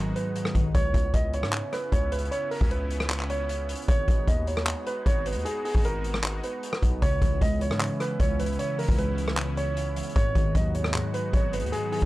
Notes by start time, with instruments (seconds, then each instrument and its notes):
Already playing: 808-style bass G#1, synth keys G#2 D#3 F#3, analog synth pad G#3 B3 D#4 F#4, grand piano A#4
0.16 grand piano B4, closed hi-hat
0.35 synth keys G#2, closed hi-hat
0.45 cross-stick
0.55 808-style bass B1, synth keys D#3, kick, closed hi-hat
0.75 808-style bass C#2, analog synth pad C#3 B3 C#4 E4, grand piano C#5, kick, closed hi-hat
0.94 808-style bass C#2, kick, closed hi-hat
1.14 808-style bass C#2, grand piano D#5, kick, closed hi-hat
1.33 grand piano C#5, closed hi-hat
1.43 808-style bass G#2, cross-stick
1.53 clap, closed hi-hat
1.73 grand piano B4, cross-stick, closed hi-hat
1.92 808-style bass C#2, grand piano C#5, kick, closed hi-hat
2.12 grand piano B4, closed hi-hat
2.19 closed hi-hat
2.25 closed hi-hat
2.31 grand piano C#5, closed hi-hat
2.51 grand piano A#4, open hi-hat
2.61 808-style bass C#2, kick
2.71 grand piano B4, closed hi-hat
2.90 closed hi-hat
3.00 cross-stick
3.10 clap, closed hi-hat
3.20 clap
3.30 grand piano C#5, closed hi-hat
3.49 closed hi-hat
3.69 closed hi-hat
3.75 closed hi-hat
3.82 closed hi-hat
3.88 808-style bass G#1, analog synth pad G#3 D#4 F#4, grand piano C#5, kick, closed hi-hat
4.08 808-style bass G#1, kick, closed hi-hat
4.28 808-style bass D#2, grand piano D#5, kick, closed hi-hat
4.47 grand piano C#5, closed hi-hat
4.57 cross-stick
4.67 clap, closed hi-hat
4.86 grand piano B4, closed hi-hat
5.06 808-style bass G#1, grand piano C#5, kick, closed hi-hat
5.26 grand piano B4, closed hi-hat
5.32 808-style bass D#2, closed hi-hat
5.39 closed hi-hat
5.45 grand piano G#4, closed hi-hat
5.65 grand piano G#4, open hi-hat
5.75 808-style bass G#1, kick
5.85 grand piano A#4, closed hi-hat
6.04 closed hi-hat
6.14 cross-stick
6.24 clap, closed hi-hat
6.43 grand piano B4, closed hi-hat
6.63 closed hi-hat
6.73 cross-stick
6.83 808-style bass B1, kick, closed hi-hat
7.02 808-style bass C#2, synth keys C#3, analog synth pad C#3 C#4 E4, grand piano C#5, kick, closed hi-hat
7.22 808-style bass C#2, synth keys E3, kick, closed hi-hat
7.41 808-style bass C#2, synth keys G#3, grand piano D#5, kick, closed hi-hat
7.61 grand piano C#5, closed hi-hat
7.71 808-style bass G#2, cross-stick
7.80 synth keys C#3, clap, closed hi-hat
8.00 grand piano B4, cross-stick, closed hi-hat
8.20 808-style bass C#2, synth keys C#3, grand piano C#5, kick, closed hi-hat
8.39 synth keys E3, grand piano B4, closed hi-hat
8.46 closed hi-hat
8.53 closed hi-hat
8.58 synth keys C#3, grand piano C#5, closed hi-hat
8.79 synth keys E3, grand piano A#4, open hi-hat
8.89 808-style bass C#2, kick
8.98 synth keys G#3, grand piano B4, closed hi-hat
9.18 closed hi-hat
9.28 cross-stick
9.37 synth keys C#3, clap, closed hi-hat
9.57 grand piano C#5, closed hi-hat
9.76 synth keys C#3, closed hi-hat
9.96 synth keys E3, closed hi-hat
10.03 closed hi-hat
10.09 closed hi-hat
10.15 808-style bass G#1, synth keys G#2, analog synth pad G#3 B3 D#4 F#4, grand piano C#5, kick, closed hi-hat
10.35 808-style bass G#1, synth keys D#3, kick, closed hi-hat
10.55 808-style bass D#2, synth keys F#3, grand piano D#5, kick, closed hi-hat
10.75 grand piano C#5, closed hi-hat
10.84 cross-stick
10.94 synth keys G#2, clap, closed hi-hat
11.14 grand piano B4, closed hi-hat
11.33 808-style bass G#1, synth keys G#2, grand piano C#5, kick, closed hi-hat
11.53 synth keys D#3, grand piano B4, closed hi-hat
11.60 808-style bass D#2, closed hi-hat
11.66 closed hi-hat
11.72 synth keys G#2, grand piano G#4, closed hi-hat
11.92 synth keys D#3, grand piano G#4, open hi-hat
12.02 808-style bass G#1, kick